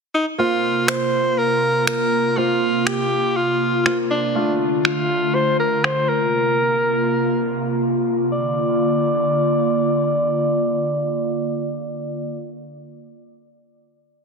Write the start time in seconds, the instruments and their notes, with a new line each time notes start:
0.14 alto saxophone D#4
0.38 analog synth pad C3 A#3 F4, grand piano A#3 C4 F4, alto saxophone F4
0.88 alto saxophone C5, finger snap
1.38 alto saxophone A#4
1.87 alto saxophone A#4, finger snap
2.37 grand piano A#3 C4 F4, alto saxophone F4
2.87 alto saxophone G4, finger snap
3.37 alto saxophone F4
3.85 grand piano A#3 C4 F4, alto saxophone F4, finger snap
4.11 alto saxophone D4
4.35 analog synth pad D3 A3, grand piano A3 D4 F4
4.85 alto saxophone F4, finger snap
5.34 alto saxophone C5
5.59 alto saxophone A#4
5.84 alto saxophone C5, finger snap
6.09 analog synth pad C3 A#3, alto saxophone A#4
8.32 analog synth pad D3 A#3 F4, alto saxophone D5